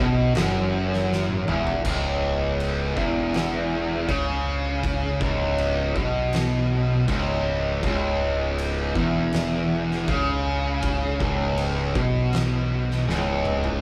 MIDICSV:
0, 0, Header, 1, 4, 480
1, 0, Start_track
1, 0, Key_signature, 4, "minor"
1, 0, Tempo, 748130
1, 1189, Time_signature, 4, 2, 24, 8
1, 8861, End_track
2, 0, Start_track
2, 0, Title_t, "Distorted electric guitar"
2, 0, Program_c, 0, 30
2, 0, Note_on_c, 0, 47, 99
2, 222, Note_off_c, 0, 47, 0
2, 224, Note_on_c, 0, 42, 95
2, 938, Note_off_c, 0, 42, 0
2, 942, Note_on_c, 0, 40, 103
2, 1178, Note_off_c, 0, 40, 0
2, 1182, Note_on_c, 0, 37, 99
2, 1897, Note_off_c, 0, 37, 0
2, 1897, Note_on_c, 0, 40, 109
2, 2614, Note_off_c, 0, 40, 0
2, 2614, Note_on_c, 0, 49, 109
2, 3333, Note_off_c, 0, 49, 0
2, 3339, Note_on_c, 0, 37, 99
2, 3816, Note_off_c, 0, 37, 0
2, 3824, Note_on_c, 0, 47, 102
2, 4539, Note_off_c, 0, 47, 0
2, 4545, Note_on_c, 0, 37, 103
2, 5016, Note_off_c, 0, 37, 0
2, 5024, Note_on_c, 0, 37, 108
2, 5740, Note_off_c, 0, 37, 0
2, 5749, Note_on_c, 0, 40, 102
2, 6463, Note_off_c, 0, 40, 0
2, 6469, Note_on_c, 0, 49, 110
2, 7184, Note_off_c, 0, 49, 0
2, 7187, Note_on_c, 0, 37, 109
2, 7663, Note_off_c, 0, 37, 0
2, 7668, Note_on_c, 0, 47, 113
2, 8384, Note_off_c, 0, 47, 0
2, 8388, Note_on_c, 0, 37, 105
2, 8861, Note_off_c, 0, 37, 0
2, 8861, End_track
3, 0, Start_track
3, 0, Title_t, "Fingered electric bass"
3, 0, Program_c, 1, 33
3, 0, Note_on_c, 1, 35, 96
3, 213, Note_off_c, 1, 35, 0
3, 239, Note_on_c, 1, 30, 95
3, 927, Note_off_c, 1, 30, 0
3, 947, Note_on_c, 1, 28, 98
3, 1171, Note_off_c, 1, 28, 0
3, 1184, Note_on_c, 1, 25, 92
3, 1879, Note_off_c, 1, 25, 0
3, 1902, Note_on_c, 1, 28, 97
3, 2598, Note_off_c, 1, 28, 0
3, 2622, Note_on_c, 1, 37, 94
3, 3319, Note_off_c, 1, 37, 0
3, 3345, Note_on_c, 1, 25, 105
3, 3800, Note_off_c, 1, 25, 0
3, 3821, Note_on_c, 1, 35, 95
3, 4519, Note_off_c, 1, 35, 0
3, 4543, Note_on_c, 1, 25, 98
3, 5000, Note_off_c, 1, 25, 0
3, 5023, Note_on_c, 1, 25, 99
3, 5721, Note_off_c, 1, 25, 0
3, 5748, Note_on_c, 1, 28, 91
3, 6444, Note_off_c, 1, 28, 0
3, 6467, Note_on_c, 1, 37, 97
3, 7164, Note_off_c, 1, 37, 0
3, 7188, Note_on_c, 1, 25, 99
3, 7645, Note_off_c, 1, 25, 0
3, 7667, Note_on_c, 1, 35, 100
3, 8366, Note_off_c, 1, 35, 0
3, 8389, Note_on_c, 1, 25, 89
3, 8846, Note_off_c, 1, 25, 0
3, 8861, End_track
4, 0, Start_track
4, 0, Title_t, "Drums"
4, 224, Note_on_c, 9, 49, 63
4, 238, Note_on_c, 9, 38, 120
4, 288, Note_off_c, 9, 49, 0
4, 302, Note_off_c, 9, 38, 0
4, 599, Note_on_c, 9, 38, 37
4, 663, Note_off_c, 9, 38, 0
4, 722, Note_on_c, 9, 38, 67
4, 786, Note_off_c, 9, 38, 0
4, 829, Note_on_c, 9, 48, 69
4, 893, Note_off_c, 9, 48, 0
4, 949, Note_on_c, 9, 45, 97
4, 1013, Note_off_c, 9, 45, 0
4, 1070, Note_on_c, 9, 43, 104
4, 1134, Note_off_c, 9, 43, 0
4, 1185, Note_on_c, 9, 36, 92
4, 1185, Note_on_c, 9, 49, 60
4, 1185, Note_on_c, 9, 57, 122
4, 1249, Note_off_c, 9, 49, 0
4, 1249, Note_off_c, 9, 57, 0
4, 1250, Note_off_c, 9, 36, 0
4, 1669, Note_on_c, 9, 49, 59
4, 1733, Note_off_c, 9, 49, 0
4, 1904, Note_on_c, 9, 36, 93
4, 1968, Note_off_c, 9, 36, 0
4, 2143, Note_on_c, 9, 49, 63
4, 2157, Note_on_c, 9, 38, 112
4, 2207, Note_off_c, 9, 49, 0
4, 2221, Note_off_c, 9, 38, 0
4, 2622, Note_on_c, 9, 36, 101
4, 2623, Note_on_c, 9, 49, 60
4, 2686, Note_off_c, 9, 36, 0
4, 2687, Note_off_c, 9, 49, 0
4, 3102, Note_on_c, 9, 36, 97
4, 3103, Note_on_c, 9, 49, 54
4, 3166, Note_off_c, 9, 36, 0
4, 3167, Note_off_c, 9, 49, 0
4, 3342, Note_on_c, 9, 36, 102
4, 3406, Note_off_c, 9, 36, 0
4, 3581, Note_on_c, 9, 49, 63
4, 3645, Note_off_c, 9, 49, 0
4, 3822, Note_on_c, 9, 36, 97
4, 3886, Note_off_c, 9, 36, 0
4, 4059, Note_on_c, 9, 49, 65
4, 4073, Note_on_c, 9, 38, 117
4, 4123, Note_off_c, 9, 49, 0
4, 4137, Note_off_c, 9, 38, 0
4, 4543, Note_on_c, 9, 36, 104
4, 4544, Note_on_c, 9, 49, 63
4, 4608, Note_off_c, 9, 36, 0
4, 4608, Note_off_c, 9, 49, 0
4, 5024, Note_on_c, 9, 36, 103
4, 5024, Note_on_c, 9, 49, 58
4, 5088, Note_off_c, 9, 36, 0
4, 5088, Note_off_c, 9, 49, 0
4, 5507, Note_on_c, 9, 49, 67
4, 5571, Note_off_c, 9, 49, 0
4, 5745, Note_on_c, 9, 36, 98
4, 5809, Note_off_c, 9, 36, 0
4, 5983, Note_on_c, 9, 49, 60
4, 5997, Note_on_c, 9, 38, 115
4, 6047, Note_off_c, 9, 49, 0
4, 6061, Note_off_c, 9, 38, 0
4, 6360, Note_on_c, 9, 38, 33
4, 6424, Note_off_c, 9, 38, 0
4, 6466, Note_on_c, 9, 49, 54
4, 6467, Note_on_c, 9, 36, 116
4, 6530, Note_off_c, 9, 49, 0
4, 6532, Note_off_c, 9, 36, 0
4, 6944, Note_on_c, 9, 49, 56
4, 6947, Note_on_c, 9, 36, 101
4, 7009, Note_off_c, 9, 49, 0
4, 7012, Note_off_c, 9, 36, 0
4, 7188, Note_on_c, 9, 36, 100
4, 7253, Note_off_c, 9, 36, 0
4, 7427, Note_on_c, 9, 49, 59
4, 7491, Note_off_c, 9, 49, 0
4, 7670, Note_on_c, 9, 36, 102
4, 7734, Note_off_c, 9, 36, 0
4, 7909, Note_on_c, 9, 49, 63
4, 7923, Note_on_c, 9, 38, 116
4, 7973, Note_off_c, 9, 49, 0
4, 7987, Note_off_c, 9, 38, 0
4, 8282, Note_on_c, 9, 38, 35
4, 8346, Note_off_c, 9, 38, 0
4, 8402, Note_on_c, 9, 38, 65
4, 8466, Note_off_c, 9, 38, 0
4, 8631, Note_on_c, 9, 45, 91
4, 8695, Note_off_c, 9, 45, 0
4, 8750, Note_on_c, 9, 43, 98
4, 8814, Note_off_c, 9, 43, 0
4, 8861, End_track
0, 0, End_of_file